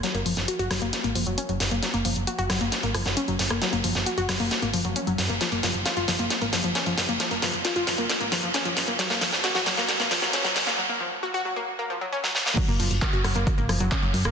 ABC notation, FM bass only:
X:1
M:4/4
L:1/16
Q:1/4=134
K:F#
V:1 name="FM bass" clef=bass
z F,,, F,,, F,,, z F,,, F,,, F,,, z G,,, F,,, F,,, z F,,, F,,, F,,, | z F,,, F,,, F,,, z F,,, F,,, F,,, z G,,, F,,, F,,, z F,,, F,,, F,,, | z F,,, F,,, F,,, z F,,, F,,, F,,, z G,,, F,,, F,,, z F,,, F,, F,,, | z F,,, F,,, F,,, z F,,, F,,, F,,, z G,,, F,,, F,,, z F,,, F,,, F,,, |
z F,,, F,,, F,,, z F,,, F,,, F,,, z G,,, F,,, F,,, z F,,, F,,, F,,, | z F,,, F,,, F,,, z F,,, F,,, F,,, z G,,, F,,, F,,, z F,,, F,,, F,,, | z16 | z F,,, F,,, F,,, z F,,, F,,, F,,, z G,,, F,,, F,,, z F,,, F,, F,,, |]